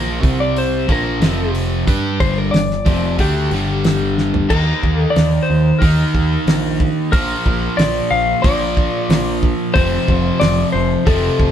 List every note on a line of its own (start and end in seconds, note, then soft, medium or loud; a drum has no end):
0.00 0.20 A#1 medium
0.00 0.21 A#2 medium
0.00 0.23 F3 medium
0.00 0.23 A#3 medium
0.00 0.41 A#4 medium
0.21 0.85 C2 medium
0.21 0.87 C3 medium
0.21 0.88 G3 medium
0.21 0.88 C4 medium
0.21 kick loud
0.21 open hi-hat soft
0.40 0.57 D5 medium
0.56 0.91 C5 medium
0.56 open hi-hat medium
0.87 1.20 A#1 medium
0.87 1.20 A#2 medium
0.87 1.20 F3 medium
0.87 1.21 A#3 loud
0.87 kick medium
0.87 open hi-hat soft
0.92 1.52 A#4 medium
1.20 1.83 F1 medium
1.20 1.86 F2 medium
1.20 1.86 C3 medium
1.20 1.86 F3 medium
1.20 snare loud
1.20 open hi-hat medium
1.55 open hi-hat soft
1.87 2.18 G2 medium
1.87 2.19 G3 medium
1.87 2.19 D4 medium
1.87 2.20 G4 medium
1.87 kick medium
1.87 open hi-hat medium
2.20 2.51 G1 medium
2.20 2.52 G2 medium
2.20 2.52 D3 medium
2.20 2.53 G3 medium
2.20 2.37 C5 medium
2.20 kick loud
2.20 open hi-hat soft
2.38 2.54 A#4 medium
2.51 2.83 G1 medium
2.51 2.80 G2 medium
2.51 2.80 D3 medium
2.51 3.20 D5 medium
2.51 snare medium
2.51 open hi-hat medium
2.71 snare soft
2.85 3.17 F1 medium
2.85 3.18 F2 medium
2.85 3.18 C3 medium
2.85 3.18 F3 medium
2.85 kick loud
2.85 open hi-hat medium
3.18 3.49 D2 medium
3.18 3.51 D3 medium
3.18 3.51 A3 loud
3.18 3.51 D4 loud
3.18 4.14 G4 medium
3.18 kick medium
3.18 open hi-hat medium
3.51 4.46 G1 medium
3.51 4.49 G2 medium
3.51 4.49 D3 medium
3.51 4.50 G3 medium
3.51 open hi-hat soft
3.84 snare loud
3.84 open hi-hat medium
4.18 snare soft
4.34 floor tom medium
4.49 4.72 D#2 medium
4.49 5.79 D#3 medium
4.49 5.82 A#3 medium
4.49 5.81 D#4 medium
4.49 4.98 A#4 medium
4.49 kick medium
4.49 crash medium
4.83 5.05 D#2 medium
4.83 kick medium
4.98 5.18 A4 medium
5.10 5.47 D5 medium
5.16 5.38 D#2 medium
5.16 snare medium
5.16 open hi-hat soft
5.43 5.80 C5 medium
5.50 5.71 D#2 medium
5.79 6.03 D#2 medium
5.79 7.10 D#3 medium
5.79 7.11 A#3 medium
5.79 6.75 A#4 medium
5.79 kick loud
5.79 open hi-hat medium
5.84 7.12 D#4 medium
6.14 6.36 D#2 medium
6.14 kick medium
6.46 6.90 A#1 medium
6.46 snare loud
6.46 open hi-hat medium
6.80 kick medium
7.12 7.34 A#1 medium
7.12 8.41 A#2 medium
7.12 8.44 F3 medium
7.12 7.80 A#4 medium
7.12 kick loud
7.12 open hi-hat medium
7.16 8.44 A#3 medium
7.46 7.67 A#1 medium
7.46 kick medium
7.77 8.00 A#1 medium
7.77 8.12 D5 medium
7.77 snare medium
7.77 open hi-hat medium
8.11 8.33 A#1 medium
8.11 8.41 F5 medium
8.42 8.87 A#1 medium
8.42 9.73 A#2 medium
8.42 9.77 F3 medium
8.42 9.74 A#3 medium
8.42 9.38 D5 medium
8.42 kick loud
8.42 open hi-hat medium
8.77 kick medium
9.09 9.53 A#1 medium
9.09 snare loud
9.09 open hi-hat medium
9.43 kick medium
9.74 9.97 F1 medium
9.74 11.03 F2 medium
9.74 11.05 C3 medium
9.74 11.06 F3 loud
9.74 10.42 C5 medium
9.74 kick loud
9.74 open hi-hat soft
10.08 10.30 F1 medium
10.08 kick medium
10.40 10.63 F1 medium
10.40 10.72 D5 loud
10.40 snare loud
10.40 open hi-hat soft
10.72 10.95 F1 medium
10.72 11.07 C5 medium
11.05 11.28 F1 medium
11.05 11.52 F2 medium
11.05 11.52 C3 medium
11.05 11.52 F3 medium
11.05 11.52 A4 medium
11.05 kick loud
11.05 open hi-hat soft
11.39 11.52 F1 medium
11.39 kick medium